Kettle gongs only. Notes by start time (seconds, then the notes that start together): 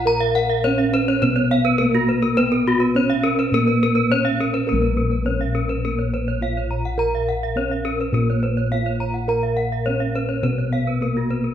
Already playing: A#2
0.06 A#4
0.64 B3
1.22 B2
1.80 B3
2.38 B4
2.96 B3
3.52 A#2
4.10 B3
4.67 A#4
4.72 A#1
5.25 B3
6.40 B3
6.98 A#4
7.56 B3
8.13 A#2
8.71 B3
9.28 A#4
9.87 B3
10.43 B2
11.01 B3